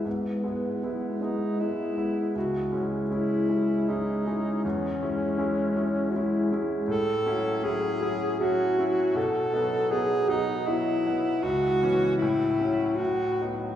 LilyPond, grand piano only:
\new Staff \with { instrumentName = "Grand piano" } { \time 3/4 \key cis \minor \tempo 4 = 79 gis,8 <gis b e'>8 <gis b e'>8 <gis b e'>8 <gis b e'>8 <gis b e'>8 | cis,8 <gis cis' e'>8 <gis cis' e'>8 <gis cis' e'>8 <gis cis' e'>8 <gis cis' e'>8 | e,8 <gis cis' e'>8 <gis cis' e'>8 <gis cis' e'>8 <gis cis' e'>8 <gis cis' e'>8 | a,8 <fis cis' e'>8 <fis cis' e'>8 <fis cis' e'>8 <fis cis' e'>8 <fis cis' e'>8 |
b,8 <fis b dis'>8 <fis b dis'>8 <fis b dis'>8 <fis b dis'>8 <fis b dis'>8 | cis,8 <e b cis'>8 a,8 <fis cis'>8 a,8 <fis b dis'>8 | }